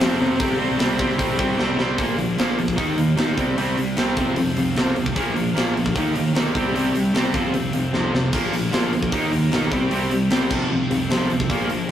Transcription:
Already playing: C4
0.00 F1 F2 C3 F3 A3 C4 F4, snare, open hi-hat
0.18 F1 F2 C3 F3
0.38 C2 C3 E3 G3 C4 E4, kick, open hi-hat
0.58 C3 G3 C4
0.78 C2 C3 G3 C4, snare, open hi-hat
0.98 C2 C3 E3 G3 C4 E4, kick
1.18 C2 C3 G3 C4, kick, open hi-hat
1.38 C2 C3 G3 C4, kick
1.58 C2 C3 E3 G3 C4 E4, snare
1.77 C2 C3 G3 C4, snare
1.98 A#1 A#2 D3 F3 A#3 D4, kick, open hi-hat
2.17 A#1 A#2 F3, open hi-hat
2.38 A#1 A#2 F3 A#3, snare, open hi-hat
2.57 A#1 A#2 F3, open hi-hat
2.68 kick
2.76 D#2 D#3 G3 A#3 D#4, kick, open hi-hat
2.97 D#2 D#3 A#3, open hi-hat
3.16 A#2 D#3 A#3 D#4, snare, open hi-hat
3.37 C2 C3 G3 C4 E4, kick, open hi-hat
3.57 C2 C3 G3 C4, open hi-hat
3.77 C2 C3 G3, open hi-hat
3.97 C2 C3 G3 C4, snare, open hi-hat
4.16 C2 F2 C3 F3 C4 F4 A4, kick, open hi-hat
4.36 C2 F2 C3, open hi-hat
4.57 C2 F2 C3, open hi-hat
4.75 C2 F2 C3 F3, snare, open hi-hat
4.95 C2 F2 C3, open hi-hat
5.06 kick
5.15 A#1 A#2 D3 F3 A#3 D4 A#4, kick, open hi-hat
5.35 A#1 A#2 F3, open hi-hat
5.54 A#1 A#2 F3 A#3, snare, open hi-hat
5.75 A#1 A#2 F3, open hi-hat
5.86 kick
5.95 D#2 D#3 G3 A#3 D#4 G4, kick, open hi-hat
6.15 D#2 D#3 A#3, open hi-hat
6.35 D2 D#3 A#3 D#4, snare, open hi-hat
6.54 C2 C3 G3 C4 E4 G4, kick, open hi-hat
6.74 C2 C3 G3 C4, open hi-hat
6.94 C2 C3 G3, open hi-hat
7.13 C2 C3 G3 C4, snare, open hi-hat
7.34 C2 F2 C3 F3 C4 F4 A4, kick, open hi-hat
7.54 C2 F2 C3, open hi-hat
7.73 C2 F2 C3, open hi-hat
7.93 C2 F2 C3 F3, snare
8.13 C2 F2 C3, snare
8.32 A#1 A#2 D3 F3 A#3 D4 A#4, kick, open hi-hat, crash
8.53 A#1 A#2 F3, open hi-hat
8.72 A#1 A#2 F3 A#3, snare, open hi-hat
8.93 D2 A#2 F3, open hi-hat
9.03 kick
9.11 D#2 D#3 G3 A#3 D#4 G4, kick, open hi-hat
9.32 D#2 D#3 A#3, open hi-hat
9.51 B1 D#3 A#3 D#4, snare, open hi-hat
9.72 C2 C3 G3 C4 E4 G4, kick, open hi-hat
9.91 C2 C3 G3 C4, open hi-hat
10.11 C2 C3 G3, open hi-hat
10.30 C2 C3 G3 C4, snare, open hi-hat
10.50 C2 F2 C3 F3 C4 F4 A4, kick, crash
10.71 C2 F2 C3
10.91 C2 F2 C3, open hi-hat
11.10 C2 F2 C3 F3, snare, open hi-hat
11.30 C2 F2 C3, open hi-hat
11.40 kick
11.50 A#1 A#2 D3 F3 A#3 D4 A#4, kick, open hi-hat
11.70 A#1 A#2 F3, open hi-hat

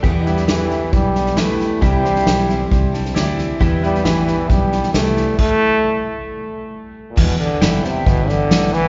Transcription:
0.03 E2 B2 E3 G3 B3 E4 G4 B4 D5, kick, snare
0.25 E3 G3 B3 E4 G4 B4, snare
0.30 E5
0.37 snare
0.47 E3 G3 B3 E4 G4 A4, snare, hi-hat pedal
0.69 E3 G3 B3 E4, snare
0.93 B1 G3, kick, snare
1.14 E3 G3 B3 E4, snare
1.26 snare
1.36 E3 G3 A3 B3 E4 G4 B4, snare, hi-hat pedal
1.60 snare
1.80 C2 C3 E3 G3 C4 E4 G4 B4 E5, kick, snare
2.03 G3 C4 E4 G4 C5, snare
2.16 snare
2.25 B1 E3 G3 C4 E4 G4 C5, snare, hi-hat pedal
2.47 G3 C4 E4, snare
2.71 C2, kick, snare
2.92 G3 C4 E4 A5, snare
3.05 snare
3.14 D2 E3 G3 C4 E4 G4 D5 G5, snare, hi-hat pedal
3.37 E5, snare
3.59 E2 B2 E3 G3 B3 E4 G4 B4 E5, kick, snare
3.82 E3 G3 B3 E4 G4 B4, snare
3.94 snare
4.04 A1 E3 G3 B3 E4 G4 B4, snare, hi-hat pedal
4.26 E3 G3 B3 E4, snare
4.49 B1 G3, kick, snare
4.71 E3 G3 B3 E4, snare
4.83 snare
4.93 C2 E3 G3 A3 B3 E4 G4 D5, snare, hi-hat pedal
4.97 E4
5.17 snare
5.38 A3, kick, crash
7.11 A#2
7.16 E1 E2 B2 E3 G3 B3 E4, kick, snare, crash
7.40 D3, muted fingered electric bass stroke, snare
7.60 F#1 E3 G3 B3 E4 B4 E5 G5, snare, hi-hat pedal
7.83 C3 E3 G3 B3 E4, muted fingered electric bass stroke, snare
8.05 G1 B2 E3 G3 B3 E4, kick, snare
8.27 D3 E3 G3 B3 E4, snare
8.49 A1 E3 G3 B3 E4, snare, hi-hat pedal
8.73 E3, snare

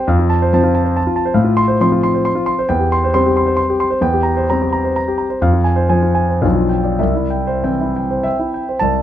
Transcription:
0.07 F2 F5
0.19 F4
0.30 A5
0.42 C5
0.53 F3 C4 A5
0.64 F4
0.75 A5
0.84 C5
0.97 A5
1.07 F4
1.16 A5
1.25 C5
1.34 A2 F5
1.44 F4
1.57 C6
1.68 C5
1.81 F3 C4 C6
1.92 F4
2.03 C6
2.14 C5
2.25 C6
2.35 F4
2.46 C6
2.59 C5
2.69 E2 G5
2.79 G4
2.92 C6
3.04 C5
3.14 G3 C4 C6
3.26 G4
3.37 C6
3.46 C5
3.57 C6
3.70 G4
3.80 C6
3.90 C5
4.01 E2 G5
4.13 G4
4.23 A#5
4.37 C5
4.49 G3 C4 A#5
4.62 G4
4.73 A#5
4.84 C5
4.96 A#5
5.08 G4
5.18 A#5
5.30 C5
5.42 F2 F5
5.53 F4
5.64 G#5
5.76 C5
5.89 F3 C4 G#5
6.02 F4
6.15 G#5
6.29 C5
6.42 B1 F3 D4 F5
6.55 F4
6.69 G5
6.83 D5
6.99 C2 E5
7.15 E4
7.30 G5
7.47 C5
7.64 E3 C4 G5
7.81 E4
7.96 G5
8.11 C5
8.23 E5 G5
8.39 E4
8.54 G5
8.69 C5
8.79 C2 A5

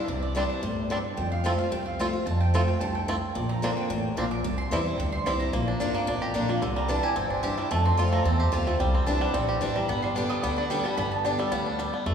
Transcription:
0.08 C2 C3 E5
0.22 D5
0.35 E3 G3 C4 D4 E4 C5
0.49 C5
0.63 G1 A2
0.90 G2 G3 C4 D4
1.17 F2 G5
1.32 F5
1.44 F3 A3 C4 F4
1.58 C4 F4 F5
1.72 C2 C3 G5
1.86 F5
1.99 F3 A3 C4 F4
2.13 C4 F4
2.26 F2 A5
2.40 G5
2.54 F3 A3 C4 F4
2.68 C4 F4 G5
2.81 C2 G2 A5
2.95 G5
3.08 A2 A3 C4 F4
3.35 A#1 A#2 D5
3.49 A#5
3.62 D3 A#3 C4 D4 F4
3.77 G5
3.90 A1 A2
4.17 A#1 A#2 A#3 C4 D4 F5
4.31 D6
4.44 C2 C3
4.58 C6
4.71 E2 E3 G3 C4 E4
4.86 C4 E4
4.98 D2 G2 G5
5.12 C6
5.26 C2 E3 G3 C4 E4
5.40 C4 E4 A#5
5.53 A#1 A#2 A#3
5.68 D4
5.80 G1 D3 A#3 D4 F4 F5
5.94 A#3 D6
6.07 A1 F2 D4
6.22 G4 A#5
6.34 A#1 D3 A#3 D4 F4
6.49 A#3 D4 F4
6.62 C2 C3 D3
6.76 G3 A#5
6.88 E3 G3 D4 E4 A5
7.03 D4 E4 G4 G#5
7.16 G1 G2 C4 G5
7.30 D4 C5
7.43 E3 G3 D4 E4 G4 E5
7.57 G3 D4 E4 G5
7.71 F2 A3 A5
7.85 C4 C6
7.97 F2 F3 A3 C4 F4 D6
8.12 A3 A#5
8.25 E2 C3 C4 A5
8.40 G4 C5
8.52 D2 F3 A3 C4 F4 F5
8.66 A3 C4 F4 A5
8.79 C2 C3 G3 G5
8.95 C4
9.06 C2 E3 G3 D4 E4 A5
9.21 G3 F#5
9.34 A#1 G2 C4 G5
9.49 G4
9.61 A1 E3 G3 D4 E4
9.75 G3 A#5
9.88 G1 G2 B3 B5
10.02 G3 C6
10.15 D3 G3 B3 D4 G4 D6
10.29 G3 D#6
10.43 D2 D3 B3 D6
10.56 D4 B5
10.70 D3 G3 B3 G4 G5
10.84 B3 G4 A5
10.97 G1 G2 B3 B5
11.12 A5
11.24 D3 G3 B3 D4 G4 G5
11.39 G3 B3 G4 E5
11.52 D2 A2 B3 F5
11.66 D4
11.79 G2 G3
11.94 B3
12.06 F1 F2 A3

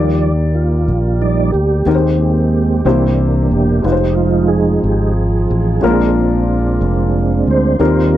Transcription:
Already playing: D#2 D#3 F3 G3 A#3 D#4 G4 D5
0.55 F4
0.88 A#1
1.21 F3 G3 D#4 D5
1.52 D2 G4
1.85 D#2 D#3 G#3 A#3 C4 D#4 G4 A#4
1.95 C5
2.85 C2 C3 E3 A#3 C4 D4 E4 G4 C5
3.51 E1 G4
3.82 F1 F3 G#3 C4 D#4 F4 B4
3.92 C5
4.15 F4
4.48 G#4
4.84 G#1 G#3 D#4 G4
5.50 A1
5.81 A#1 A#2 G#3 A#3 C4 D4 F4 A#4
5.89 D4
6.81 F1
7.47 D2 C5
7.79 D#2 D#3 G3 C4 D#4 F4 A#4

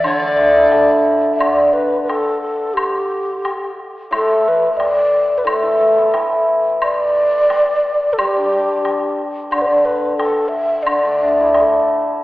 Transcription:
0.03 D3 C#5 D5, high woodblock
0.18 A3 D5
0.39 D4
0.57 E4
0.72 A4, low woodblock
1.33 E5
1.39 D3 D5, high woodblock
1.67 D5
1.73 B4
2.03 B4
2.09 A4, high woodblock, low woodblock
2.42 A4
2.74 G4, high woodblock
3.45 high woodblock, low woodblock
4.11 A2, high woodblock
4.15 A4
4.48 B4
4.72 E5
4.77 D5, high woodblock, low woodblock
5.38 B4
5.45 A2 A4, high woodblock
5.63 E3
5.79 A3
5.97 B3
6.14 E4, high woodblock, low woodblock
6.82 D5, high woodblock
7.50 high woodblock, low woodblock
8.13 A4
8.18 G3 G4, high woodblock
8.36 D4
8.85 high woodblock, low woodblock
9.51 D3 D5, high woodblock
9.62 B4
9.66 D5
9.85 B4
10.17 A4, high woodblock, low woodblock
10.48 E5
10.83 D3 D5, high woodblock
11.04 A3
11.22 D4
11.40 E4
11.54 high woodblock, low woodblock
11.59 A4

